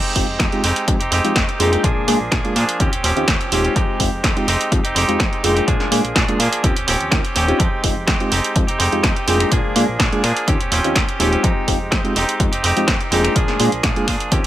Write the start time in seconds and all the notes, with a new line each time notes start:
Already playing: G#3 C4 D#4 G4
0.16 F1 G#3 C4 D#4 F4 G4, kick, open hi-hat
0.28 F2
0.39 F2 G#3 C4 D#4 G4, kick, snare, closed hi-hat
0.52 G#3 C4 D#4 F4 G4, closed hi-hat
0.63 F1 G#3 C4 D#4 G4, open hi-hat
0.76 closed hi-hat
0.87 F2 G#3 C4 D#4 F4 G4, kick, closed hi-hat
1.00 F1 C4 D#4 G4, closed hi-hat
1.11 F1 G#3 C4 D#4 G4, open hi-hat
1.24 F2 G#3 C4 D#4 F4 G4, closed hi-hat
1.35 F2 G#3 C4 D#4 G4, kick, snare, closed hi-hat
1.48 C4 D#4 G4, closed hi-hat
1.59 F1 G#3 A#3 C4 D4 D#4 F4 G4 G#4, open hi-hat
1.72 C4 D#4 G4, closed hi-hat
1.83 A#1 F3 A#3 D4 G#4, kick, closed hi-hat
1.96 A#2
2.08 A#2 G#3 A#3 D4 F4 G#4, open hi-hat
2.20 A#1
2.31 A#1 F3 A#3 D4 G#4, kick, snare, closed hi-hat
2.44 G#3 A#3 D4 F4 G#4, closed hi-hat
2.55 A#2 F3 A#3 D4 G#4, open hi-hat
2.69 closed hi-hat
2.80 D#2 C4 C#4 D#4 F4 G4, kick, closed hi-hat
2.92 D#1 C4 C#4 G4, closed hi-hat
3.03 D#1 F3 C4 C#4 G4, open hi-hat
3.16 D#2 C4 C#4 D#4 F4 G4, closed hi-hat
3.28 D#2 C4 C#4 G4, kick, snare, closed hi-hat
3.41 closed hi-hat
3.51 D#1 F3 G#3 C4 C#4 D#4 F4 G4, open hi-hat
3.64 C4 C#4 G4, closed hi-hat
3.75 F2 G#3 C4 D#4 G4, kick, closed hi-hat
3.99 F1 G#3 C4 D#4 F4 G4, kick, open hi-hat
4.12 F2
4.23 F2 G#3 C4 D#4 G4, kick, snare, closed hi-hat
4.36 G#3 C4 D#4 F4 G4, closed hi-hat
4.47 F1 G#3 C4 D#4 G4, open hi-hat
4.61 closed hi-hat
4.71 F2 G#3 C4 D#4 F4 G4, kick, closed hi-hat
4.84 F1 C4 D#4 G4, closed hi-hat
4.95 F1 G#3 C4 D#4 G4, open hi-hat
5.08 F2 G#3 C4 D#4 F4 G4, closed hi-hat
5.19 F2 G#3 C4 G4, kick, snare, closed hi-hat
5.33 closed hi-hat
5.43 F1 G#3 A#3 C4 D4 D#4 F4 G4 G#4, open hi-hat
5.55 C4 D#4 G4, closed hi-hat
5.67 A#1 F3 A#3 D4 G#4, kick, closed hi-hat
5.80 A#2, snare
5.91 A#2 G#3 A#3 D4 F4 G#4, open hi-hat
6.04 A#1, closed hi-hat
6.15 A#1 F3 A#3 D4 G#4, kick, snare, closed hi-hat
6.28 G#3 A#3 D4 F4 G#4, closed hi-hat
6.39 A#2 F3 A#3 D4 G#4, open hi-hat
6.53 closed hi-hat
6.63 D#2 F3 C4 C#4 D#4 F4 G4, kick, closed hi-hat
6.76 D#1 C4 C#4 G4, closed hi-hat
6.87 D#1 F3 C4 C#4 G4, open hi-hat
7.00 D#2, closed hi-hat
7.11 D#2 F3 C4 C#4 D#4 F4 G4 A#4, kick, snare, closed hi-hat
7.23 C4 C#4 G4, closed hi-hat
7.35 D#1 F3 C4 C#4 G4, open hi-hat
7.47 C4 C#4 D#4 F4 G4, closed hi-hat
7.59 F2 G#3 C4 D#4 G4, kick, closed hi-hat
7.84 F1 G#3 C4 D#4 F4 G4, kick, open hi-hat
7.96 F2
8.07 F2 G#3 C4 D#4 G4, kick, snare, closed hi-hat
8.20 G#3 C4 D#4 F4 G4, closed hi-hat
8.31 F1 G#3 C4 D#4 G4, open hi-hat
8.44 closed hi-hat
8.55 F2 G#3 C4 D#4 F4 G4, kick, closed hi-hat
8.67 F1 C4 D#4 G4, closed hi-hat
8.79 F1 G#3 C4 D#4 G4, open hi-hat
8.92 F2 G#3 C4 D#4 F4 G4, closed hi-hat
9.03 F2 G#3 C4 D#4 G4, kick, snare, closed hi-hat
9.15 C4 D#4 G4, closed hi-hat
9.27 F1 G#3 A#3 C4 D4 D#4 F4 G4 G#4, open hi-hat
9.39 C4 D#4 G4, finger snap, closed hi-hat
9.51 A#1 F3 A#3 D4 G#4, kick, closed hi-hat
9.64 A#2
9.76 A#2 G#3 A#3 D4 F4 G#4, open hi-hat
9.89 A#1
9.99 A#1 F3 A#3 D4 G#4, kick, snare, closed hi-hat
10.12 G#3 A#3 D4 F4 G#4, closed hi-hat
10.23 A#2 F3 A#3 D4 G#4, finger snap, open hi-hat
10.37 closed hi-hat
10.47 D#2 F3 C4 C#4 D#4 F4 G4, kick, closed hi-hat
10.59 D#1 C4 C#4 G4, closed hi-hat
10.71 D#1 F3 C4 C#4 G4, open hi-hat
10.84 D#2 C4 C#4 D#4 F4 G4, closed hi-hat
10.95 D#2 F3 C4 C#4 G4, kick, snare, closed hi-hat
11.07 C4 C#4 G4, closed hi-hat
11.19 D#1 F3 G#3 C4 C#4 D#4 F4 G4, open hi-hat
11.32 C4 C#4 G4, closed hi-hat
11.43 F2 G#3 C4 D#4 G4, kick, closed hi-hat
11.67 F1 G#3 C4 D#4 F4 G4, kick, open hi-hat
11.81 F2
11.91 F2 G#3 C4 D#4 G4, kick, snare, closed hi-hat
12.04 G#3 C4 D#4 F4 G4, closed hi-hat
12.15 F1 G#3 C4 D#4 G4, open hi-hat
12.29 closed hi-hat
12.40 F2 G#3 C4 D#4 F4 G4, kick, closed hi-hat
12.52 F1 C4 D#4 G4, closed hi-hat
12.63 F1 G#3 C4 D#4 G4, open hi-hat
12.76 F2 G#3 C4 D#4 F4 G4, closed hi-hat
12.87 F2 G#3 C4 D#4 G4, kick, snare, closed hi-hat
13.00 C4 D#4 G4, closed hi-hat
13.11 F1 G#3 A#3 C4 D4 D#4 F4 G4 G#4, open hi-hat
13.24 C4 D#4 G4, finger snap, closed hi-hat
13.35 A#1 F3 A#3 D4 G#4, kick, closed hi-hat
13.48 A#2, snare
13.60 A#2 G#3 A#3 D4 F4 G#4, open hi-hat
13.72 A#1, closed hi-hat
13.83 A#1 F3 A#3 D4 G#4, kick, snare, closed hi-hat
13.96 G#3 A#3 D4 F4 G#4, closed hi-hat
14.07 A#2 F3 A#3 D4 G#4, finger snap, kick, open hi-hat
14.20 closed hi-hat
14.31 D#2 F3 C4 C#4 D#4 F4 G4, kick, closed hi-hat
14.44 G4